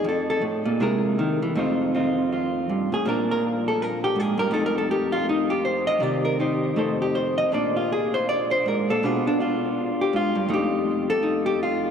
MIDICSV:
0, 0, Header, 1, 2, 480
1, 0, Start_track
1, 0, Tempo, 380952
1, 52, Time_signature, 4, 2, 24, 8
1, 2454, Tempo, 367647
1, 6774, Tempo, 377834
1, 11094, Tempo, 366748
1, 15346, End_track
2, 0, Start_track
2, 0, Title_t, "Hollow-body jazz guitar"
2, 0, Program_c, 0, 26
2, 55, Note_on_c, 0, 41, 90
2, 108, Note_on_c, 0, 69, 77
2, 361, Note_off_c, 0, 69, 0
2, 376, Note_on_c, 0, 69, 99
2, 518, Note_off_c, 0, 41, 0
2, 523, Note_on_c, 0, 45, 74
2, 537, Note_off_c, 0, 69, 0
2, 824, Note_on_c, 0, 46, 74
2, 828, Note_off_c, 0, 45, 0
2, 999, Note_off_c, 0, 46, 0
2, 1010, Note_on_c, 0, 48, 77
2, 1018, Note_on_c, 0, 56, 66
2, 1028, Note_on_c, 0, 64, 60
2, 1036, Note_on_c, 0, 68, 66
2, 1041, Note_on_c, 0, 70, 77
2, 1492, Note_off_c, 0, 56, 0
2, 1498, Note_on_c, 0, 51, 77
2, 1790, Note_off_c, 0, 51, 0
2, 1795, Note_on_c, 0, 52, 73
2, 1954, Note_off_c, 0, 48, 0
2, 1959, Note_on_c, 0, 41, 76
2, 1961, Note_off_c, 0, 64, 0
2, 1964, Note_off_c, 0, 52, 0
2, 1968, Note_off_c, 0, 68, 0
2, 1969, Note_on_c, 0, 57, 51
2, 1971, Note_off_c, 0, 70, 0
2, 1977, Note_on_c, 0, 60, 53
2, 1986, Note_on_c, 0, 63, 51
2, 1997, Note_on_c, 0, 65, 51
2, 2437, Note_off_c, 0, 60, 0
2, 2440, Note_off_c, 0, 63, 0
2, 2451, Note_on_c, 0, 60, 49
2, 2461, Note_off_c, 0, 65, 0
2, 2463, Note_on_c, 0, 63, 41
2, 2467, Note_on_c, 0, 65, 47
2, 2942, Note_off_c, 0, 65, 0
2, 2947, Note_on_c, 0, 65, 49
2, 3415, Note_off_c, 0, 41, 0
2, 3429, Note_on_c, 0, 43, 65
2, 3719, Note_off_c, 0, 43, 0
2, 3725, Note_on_c, 0, 45, 64
2, 3741, Note_off_c, 0, 65, 0
2, 3746, Note_on_c, 0, 68, 91
2, 3880, Note_off_c, 0, 57, 0
2, 3881, Note_off_c, 0, 60, 0
2, 3882, Note_off_c, 0, 63, 0
2, 3899, Note_on_c, 0, 46, 79
2, 3900, Note_off_c, 0, 45, 0
2, 3905, Note_on_c, 0, 53, 54
2, 3911, Note_off_c, 0, 68, 0
2, 3918, Note_on_c, 0, 58, 53
2, 3926, Note_on_c, 0, 62, 56
2, 3939, Note_on_c, 0, 70, 76
2, 4221, Note_off_c, 0, 70, 0
2, 4237, Note_on_c, 0, 70, 95
2, 4396, Note_off_c, 0, 70, 0
2, 4714, Note_on_c, 0, 69, 89
2, 4900, Note_off_c, 0, 69, 0
2, 4900, Note_on_c, 0, 70, 95
2, 5181, Note_off_c, 0, 70, 0
2, 5186, Note_on_c, 0, 67, 96
2, 5337, Note_on_c, 0, 44, 73
2, 5389, Note_off_c, 0, 67, 0
2, 5389, Note_on_c, 0, 68, 85
2, 5618, Note_off_c, 0, 44, 0
2, 5623, Note_on_c, 0, 43, 72
2, 5641, Note_off_c, 0, 68, 0
2, 5646, Note_on_c, 0, 70, 115
2, 5789, Note_off_c, 0, 53, 0
2, 5791, Note_off_c, 0, 43, 0
2, 5796, Note_off_c, 0, 58, 0
2, 5796, Note_on_c, 0, 41, 82
2, 5800, Note_off_c, 0, 62, 0
2, 5807, Note_off_c, 0, 46, 0
2, 5810, Note_on_c, 0, 57, 56
2, 5813, Note_off_c, 0, 70, 0
2, 5816, Note_on_c, 0, 63, 57
2, 5833, Note_on_c, 0, 69, 90
2, 5979, Note_off_c, 0, 69, 0
2, 5995, Note_on_c, 0, 70, 102
2, 6141, Note_off_c, 0, 70, 0
2, 6151, Note_on_c, 0, 69, 85
2, 6301, Note_off_c, 0, 69, 0
2, 6321, Note_on_c, 0, 67, 94
2, 6600, Note_on_c, 0, 65, 93
2, 6615, Note_off_c, 0, 67, 0
2, 6775, Note_off_c, 0, 65, 0
2, 6815, Note_off_c, 0, 63, 0
2, 6820, Note_on_c, 0, 63, 77
2, 7084, Note_on_c, 0, 67, 90
2, 7098, Note_off_c, 0, 63, 0
2, 7251, Note_off_c, 0, 67, 0
2, 7272, Note_on_c, 0, 72, 82
2, 7550, Note_off_c, 0, 72, 0
2, 7555, Note_on_c, 0, 75, 116
2, 7703, Note_off_c, 0, 57, 0
2, 7712, Note_off_c, 0, 41, 0
2, 7717, Note_on_c, 0, 48, 78
2, 7725, Note_on_c, 0, 51, 57
2, 7739, Note_on_c, 0, 63, 47
2, 7748, Note_on_c, 0, 67, 55
2, 7755, Note_off_c, 0, 75, 0
2, 7755, Note_on_c, 0, 74, 82
2, 8027, Note_off_c, 0, 67, 0
2, 8032, Note_on_c, 0, 70, 89
2, 8043, Note_off_c, 0, 74, 0
2, 8203, Note_off_c, 0, 70, 0
2, 8205, Note_off_c, 0, 63, 0
2, 8221, Note_on_c, 0, 63, 48
2, 8228, Note_on_c, 0, 67, 51
2, 8242, Note_on_c, 0, 72, 46
2, 8656, Note_off_c, 0, 48, 0
2, 8669, Note_off_c, 0, 63, 0
2, 8672, Note_off_c, 0, 67, 0
2, 8679, Note_off_c, 0, 72, 0
2, 8682, Note_off_c, 0, 51, 0
2, 8685, Note_on_c, 0, 41, 67
2, 8693, Note_on_c, 0, 57, 50
2, 8702, Note_on_c, 0, 63, 47
2, 8713, Note_on_c, 0, 69, 47
2, 8718, Note_on_c, 0, 72, 48
2, 9004, Note_off_c, 0, 69, 0
2, 9011, Note_on_c, 0, 67, 81
2, 9166, Note_off_c, 0, 72, 0
2, 9175, Note_off_c, 0, 67, 0
2, 9181, Note_on_c, 0, 72, 78
2, 9463, Note_off_c, 0, 72, 0
2, 9468, Note_on_c, 0, 75, 109
2, 9634, Note_off_c, 0, 57, 0
2, 9638, Note_off_c, 0, 63, 0
2, 9646, Note_off_c, 0, 75, 0
2, 9648, Note_on_c, 0, 46, 73
2, 9651, Note_off_c, 0, 41, 0
2, 9661, Note_on_c, 0, 58, 49
2, 9670, Note_on_c, 0, 62, 51
2, 9678, Note_on_c, 0, 74, 81
2, 9956, Note_off_c, 0, 74, 0
2, 9961, Note_on_c, 0, 65, 64
2, 10134, Note_off_c, 0, 65, 0
2, 10163, Note_on_c, 0, 68, 87
2, 10438, Note_on_c, 0, 72, 100
2, 10456, Note_off_c, 0, 68, 0
2, 10613, Note_off_c, 0, 72, 0
2, 10626, Note_on_c, 0, 74, 104
2, 10905, Note_off_c, 0, 74, 0
2, 10910, Note_on_c, 0, 72, 104
2, 11088, Note_off_c, 0, 72, 0
2, 11093, Note_on_c, 0, 44, 64
2, 11124, Note_on_c, 0, 70, 74
2, 11394, Note_off_c, 0, 46, 0
2, 11405, Note_off_c, 0, 44, 0
2, 11410, Note_on_c, 0, 46, 64
2, 11411, Note_off_c, 0, 70, 0
2, 11416, Note_on_c, 0, 69, 95
2, 11566, Note_off_c, 0, 58, 0
2, 11571, Note_off_c, 0, 62, 0
2, 11581, Note_on_c, 0, 47, 78
2, 11583, Note_off_c, 0, 46, 0
2, 11589, Note_on_c, 0, 59, 57
2, 11597, Note_on_c, 0, 62, 55
2, 11608, Note_off_c, 0, 69, 0
2, 11608, Note_on_c, 0, 68, 83
2, 11616, Note_on_c, 0, 65, 46
2, 11884, Note_off_c, 0, 62, 0
2, 11900, Note_on_c, 0, 62, 89
2, 11904, Note_off_c, 0, 68, 0
2, 12054, Note_off_c, 0, 62, 0
2, 12070, Note_on_c, 0, 62, 50
2, 12082, Note_off_c, 0, 65, 0
2, 12088, Note_on_c, 0, 65, 50
2, 12870, Note_on_c, 0, 67, 97
2, 13019, Note_off_c, 0, 47, 0
2, 13024, Note_on_c, 0, 44, 71
2, 13034, Note_off_c, 0, 67, 0
2, 13037, Note_off_c, 0, 65, 0
2, 13061, Note_on_c, 0, 65, 87
2, 13308, Note_off_c, 0, 44, 0
2, 13313, Note_on_c, 0, 43, 74
2, 13480, Note_off_c, 0, 62, 0
2, 13481, Note_off_c, 0, 43, 0
2, 13482, Note_off_c, 0, 59, 0
2, 13486, Note_on_c, 0, 41, 87
2, 13497, Note_on_c, 0, 57, 56
2, 13505, Note_on_c, 0, 63, 60
2, 13517, Note_off_c, 0, 65, 0
2, 13551, Note_on_c, 0, 67, 91
2, 14284, Note_off_c, 0, 67, 0
2, 14289, Note_on_c, 0, 69, 123
2, 14443, Note_off_c, 0, 63, 0
2, 14458, Note_on_c, 0, 63, 56
2, 14756, Note_off_c, 0, 69, 0
2, 14762, Note_on_c, 0, 67, 107
2, 14934, Note_off_c, 0, 67, 0
2, 14982, Note_on_c, 0, 65, 82
2, 15346, Note_off_c, 0, 41, 0
2, 15346, Note_off_c, 0, 57, 0
2, 15346, Note_off_c, 0, 63, 0
2, 15346, Note_off_c, 0, 65, 0
2, 15346, End_track
0, 0, End_of_file